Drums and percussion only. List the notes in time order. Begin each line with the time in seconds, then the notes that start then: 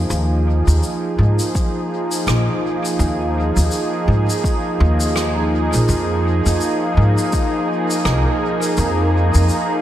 0.10 shaker
0.68 shaker
0.83 shaker
1.39 shaker
1.55 kick, shaker
2.12 shaker
2.27 cross-stick, shaker
2.85 shaker
3.00 shaker
3.57 shaker
3.72 shaker
4.30 shaker
4.44 kick, shaker
5.00 shaker
5.16 cross-stick, shaker
5.73 shaker
5.89 shaker
6.46 shaker
6.61 shaker
7.18 shaker
7.33 kick, shaker
7.91 shaker
8.05 cross-stick, shaker
8.62 shaker
8.77 shaker
9.35 shaker
9.49 shaker